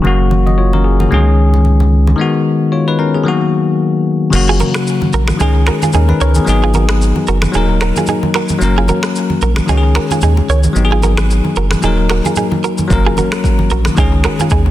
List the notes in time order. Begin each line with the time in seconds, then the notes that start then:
0.02 F#1 C#3 F#3 A#3, low conga
0.07 F#4
0.31 high conga
0.47 F#4 D#5, high conga
0.58 F4 C#5
0.73 C#4 A#4, high conga
0.84 G#4
1.00 A#3 F#4, high conga
1.09 C#2 D3 G#3 C#4, low conga
1.14 D#3 G#4
1.54 high conga
1.65 low conga
1.80 high conga
2.07 high conga
2.16 D#3 G#3 B3
2.21 F#4
2.72 F4 C#5
2.88 D#4 B4
2.99 C#4 A#4
3.15 B3 G#4
3.23 D#3 F#3 A#3
3.28 F#4
4.30 F#1 C#3 F#3 A#3, crash, low conga, shaker
4.35 F#4
4.49 F4 G#4
4.60 F#4 A#4, high conga, shaker
4.74 finger snap, cross-stick, shaker
4.87 shaker
5.02 high conga
5.13 A#1 F#4 A#4, shaker
5.28 finger snap, cross-stick, high conga, shaker
5.37 C#2 D#3 G#3 C#4 G#4, low conga, shaker
5.42 D#4 G#4
5.67 F#4 A#4, finger snap, cross-stick, shaker
5.82 F4 G#4, high conga, shaker
5.93 D#2 C#4 D#4 G#4 A#4, low conga, shaker
6.09 D#4 B4, high conga
6.20 C#2 C#4 A#4 C#5, shaker
6.35 B3 G#4, high conga, shaker
6.45 G#1 F#3 B3 D#4, low conga, shaker
6.50 G#4
6.64 F4 G#4
6.74 F#4 A#4, high conga, shaker
6.89 finger snap, cross-stick, shaker
7.02 shaker
7.16 high conga
7.27 F#1 F#4 A#4, shaker
7.42 finger snap, cross-stick, high conga, shaker
7.52 D#1 F#3 A#3 D#4 G#4, low conga, shaker
7.56 D#4 A#4
7.81 F#4 A#4, finger snap, cross-stick, shaker
7.96 F4 G#4, high conga, shaker
8.07 D#4 G#4, low conga, shaker
8.23 high conga
8.34 F#4 A#4, finger snap, cross-stick, shaker
8.49 high conga, shaker
8.59 F#1 F#3 A#3 C#4, low conga, shaker
8.64 A#4
8.78 F4 G#4
8.88 F#4 A#4, high conga, shaker
9.03 finger snap, cross-stick, shaker
9.16 shaker
9.30 high conga
9.41 A#1 F#4 A#4, shaker
9.56 finger snap, cross-stick, high conga, shaker
9.66 C#2 D#3 G#3 C#4 D#4 G#4, low conga, shaker
9.71 F#4
9.77 G#4
9.95 F#4 A#4, finger snap, cross-stick, shaker
10.11 F4 G#4, high conga, shaker
10.21 D#2 D#4 G#4, low conga, shaker
10.37 high conga
10.49 C#2 A#4 C#5, shaker
10.63 high conga, shaker
10.73 G#1 F#3 B3 D#4, low conga, shaker
10.78 G4
10.85 G#4
10.92 F4 G#4
11.02 F#4 A#4, high conga, shaker
11.17 finger snap, cross-stick, high conga, shaker
11.31 shaker
11.44 high conga
11.56 F#1 F#4 A#4, shaker
11.71 finger snap, cross-stick, high conga, shaker
11.80 D#1 F3 A#3 D#4 G#4, low conga, shaker
11.85 F#3 D#4 A#4
12.10 F#4 A#4, finger snap, cross-stick, shaker
12.25 F4 G#4, high conga, shaker
12.36 D#4 G#4, low conga, shaker
12.52 high conga
12.64 F#4 A#4, shaker
12.78 high conga, shaker
12.88 F#1 F#3 A#3 C#4, kick, low conga, shaker
12.93 A#4
13.07 F4 G#4
13.17 F#4 A#4, high conga, shaker
13.32 finger snap, cross-stick, shaker
13.44 kick, shaker
13.59 high conga
13.70 A#1 F#4 A#4, shaker
13.85 finger snap, cross-stick, high conga, shaker
13.95 C#2 D#3 G#3 C#4 G#4, kick, low conga, shaker
13.99 D#4 G#4
14.24 F#4 A#4, finger snap, cross-stick, shaker
14.39 F4 G#4, high conga, shaker
14.50 D#2 D#4 G#4, kick, low conga, shaker
14.66 high conga